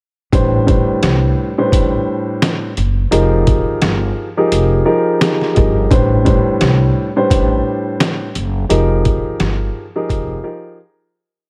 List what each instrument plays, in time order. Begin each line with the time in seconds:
0.32 upright bass A1, grand piano A2 G3 D4 B4 C5, kick, closed hi-hat
0.67 grand piano A2 G3 D4 B4 C5, kick, closed hi-hat
1.03 upright bass C2, snare, closed hi-hat
1.58 grand piano A2 G3 D4 B4 C5
1.72 upright bass A1, kick, closed hi-hat
2.42 snare, closed hi-hat
2.77 upright bass F#1, closed hi-hat
3.11 upright bass F1, grand piano F3 D#4 G4 G#4 A#4, closed hi-hat
3.47 kick, closed hi-hat
3.82 upright bass G1, snare, closed hi-hat
4.37 grand piano F3 D#4 G4 G#4 A#4
4.52 upright bass F1, closed hi-hat
4.85 grand piano F3 D#4 G4 G#4 A#4
5.20 grand piano F3 D#4 G4 G#4 A#4, snare, closed hi-hat
5.41 snare
5.54 upright bass G1, grand piano F3 D#4 G4 G#4 A#4, kick, closed hi-hat
5.91 upright bass A1, grand piano A2 G3 D4 B4 C5, kick, closed hi-hat
6.25 grand piano A2 G3 D4 B4 C5, kick, closed hi-hat
6.61 upright bass C2, snare, closed hi-hat
7.16 grand piano A2 G3 D4 B4 C5
7.30 upright bass A1, kick, closed hi-hat
8.00 snare, closed hi-hat
8.35 upright bass F#1, closed hi-hat
8.69 upright bass F1, grand piano F3 D#4 G4 G#4 A#4, closed hi-hat
9.05 kick, closed hi-hat
9.40 upright bass G1, snare, closed hi-hat
9.96 grand piano F3 D#4 G4 G#4 A#4
10.10 upright bass F1, kick, closed hi-hat
10.44 grand piano F3 D#4 G4 G#4 A#4